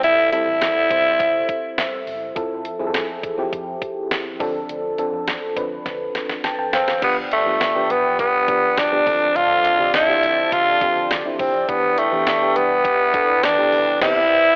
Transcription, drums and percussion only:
0.03 closed hi-hat medium
0.33 closed hi-hat medium
0.62 snare loud
0.62 closed hi-hat medium
0.91 kick medium
0.91 closed hi-hat medium
1.20 kick medium
1.20 closed hi-hat loud
1.49 kick medium
1.49 closed hi-hat medium
1.78 snare loud
1.78 closed hi-hat medium
2.07 open hi-hat medium
2.36 kick loud
2.36 closed hi-hat medium
2.65 closed hi-hat medium
2.94 snare loud
2.94 closed hi-hat medium
3.24 kick medium
3.24 closed hi-hat medium
3.53 kick medium
3.53 closed hi-hat medium
3.82 kick medium
3.82 closed hi-hat medium
4.11 snare loud
4.11 closed hi-hat medium
4.40 kick loud
4.40 open hi-hat medium
4.69 closed hi-hat medium
4.99 closed hi-hat medium
5.28 snare medium
5.28 closed hi-hat medium
5.57 kick medium
5.57 closed hi-hat medium
5.86 kick medium
5.86 snare medium
5.86 closed hi-hat medium
6.15 snare medium
6.15 closed hi-hat medium
6.29 snare medium
6.44 snare medium
6.44 closed hi-hat medium
6.73 snare medium
6.73 closed hi-hat medium
6.88 snare medium
7.02 kick loud
7.02 closed hi-hat medium
7.02 crash medium
7.32 closed hi-hat medium
7.61 snare loud
7.61 closed hi-hat medium
7.90 closed hi-hat medium
8.19 kick medium
8.19 closed hi-hat loud
8.48 kick medium
8.48 closed hi-hat medium
8.77 snare loud
8.77 closed hi-hat medium
9.06 kick loud
9.06 open hi-hat medium
9.36 closed hi-hat medium
9.65 closed hi-hat medium
9.94 snare loud
9.94 closed hi-hat medium
10.23 closed hi-hat medium
10.52 kick medium
10.52 closed hi-hat loud
10.81 kick medium
10.81 closed hi-hat medium
11.11 snare loud
11.11 closed hi-hat medium
11.39 kick medium
11.39 open hi-hat medium
11.69 kick loud
11.69 closed hi-hat medium
11.98 closed hi-hat medium
12.27 snare loud
12.27 closed hi-hat medium
12.56 closed hi-hat medium
12.85 kick loud
12.85 closed hi-hat loud
13.14 kick medium
13.14 closed hi-hat medium
13.43 snare loud
13.43 closed hi-hat medium
13.72 open hi-hat medium
14.02 kick loud
14.02 snare loud
14.02 crash medium

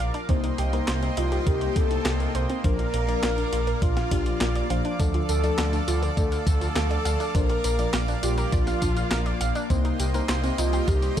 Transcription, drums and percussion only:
0.14 closed hi-hat soft
0.29 kick loud
0.29 closed hi-hat medium
0.44 closed hi-hat soft
0.58 closed hi-hat medium
0.73 closed hi-hat soft
0.88 snare loud
0.88 clap medium
0.88 closed hi-hat medium
1.03 closed hi-hat soft
1.17 closed hi-hat loud
1.32 closed hi-hat soft
1.47 kick loud
1.47 closed hi-hat medium
1.61 closed hi-hat soft
1.76 kick loud
1.76 closed hi-hat loud
1.91 closed hi-hat soft
2.05 snare loud
2.05 clap medium
2.05 closed hi-hat medium
2.20 closed hi-hat soft
2.35 closed hi-hat medium
2.50 closed hi-hat soft
2.64 kick loud
2.64 closed hi-hat medium
2.79 closed hi-hat soft
2.94 closed hi-hat medium
3.09 closed hi-hat soft
3.23 snare loud
3.23 clap medium
3.23 closed hi-hat medium
3.38 closed hi-hat soft
3.53 closed hi-hat medium
3.67 closed hi-hat soft
3.82 kick loud
3.82 closed hi-hat medium
3.97 snare soft
3.97 closed hi-hat soft
4.11 kick medium
4.11 closed hi-hat medium
4.26 closed hi-hat soft
4.41 snare loud
4.41 clap medium
4.41 closed hi-hat medium
4.55 closed hi-hat soft
4.70 closed hi-hat medium
4.85 closed hi-hat soft
5.00 kick loud
5.00 closed hi-hat medium
5.00 tambourine soft
5.14 closed hi-hat soft
5.29 closed hi-hat medium
5.29 tambourine medium
5.44 closed hi-hat soft
5.44 tambourine soft
5.58 snare loud
5.58 clap medium
5.58 closed hi-hat medium
5.58 tambourine soft
5.73 closed hi-hat soft
5.73 tambourine soft
5.88 closed hi-hat medium
5.88 tambourine medium
6.03 closed hi-hat soft
6.03 tambourine soft
6.17 kick loud
6.17 closed hi-hat medium
6.17 tambourine soft
6.32 closed hi-hat soft
6.32 tambourine soft
6.47 kick loud
6.47 closed hi-hat medium
6.47 tambourine medium
6.61 closed hi-hat soft
6.61 tambourine soft
6.76 snare loud
6.76 clap medium
6.76 closed hi-hat medium
6.76 tambourine soft
6.91 closed hi-hat soft
7.05 closed hi-hat medium
7.05 tambourine medium
7.20 closed hi-hat soft
7.20 tambourine soft
7.35 kick loud
7.35 closed hi-hat medium
7.35 tambourine soft
7.50 closed hi-hat soft
7.64 closed hi-hat medium
7.64 tambourine medium
7.79 closed hi-hat soft
7.79 tambourine soft
7.94 snare loud
7.94 clap medium
7.94 closed hi-hat medium
7.94 tambourine soft
8.08 closed hi-hat soft
8.08 tambourine soft
8.23 closed hi-hat medium
8.23 tambourine medium
8.38 closed hi-hat soft
8.38 tambourine soft
8.52 kick loud
8.52 closed hi-hat medium
8.52 tambourine soft
8.67 snare soft
8.67 closed hi-hat soft
8.67 tambourine soft
8.82 kick medium
8.82 closed hi-hat medium
8.82 tambourine medium
8.97 closed hi-hat soft
8.97 tambourine soft
9.11 snare loud
9.11 clap medium
9.11 closed hi-hat medium
9.11 tambourine soft
9.26 closed hi-hat soft
9.41 closed hi-hat medium
9.41 tambourine medium
9.55 closed hi-hat soft
9.55 tambourine soft
9.70 kick loud
9.70 closed hi-hat medium
9.70 tambourine soft
9.85 closed hi-hat soft
10.00 closed hi-hat medium
10.00 tambourine medium
10.14 closed hi-hat soft
10.14 tambourine soft
10.29 snare loud
10.29 clap loud
10.29 closed hi-hat medium
10.29 tambourine soft
10.44 closed hi-hat soft
10.44 tambourine soft
10.58 closed hi-hat medium
10.58 tambourine medium
10.73 closed hi-hat soft
10.73 tambourine soft
10.88 kick loud
10.88 closed hi-hat medium
10.88 tambourine soft
11.02 closed hi-hat soft
11.02 tambourine soft

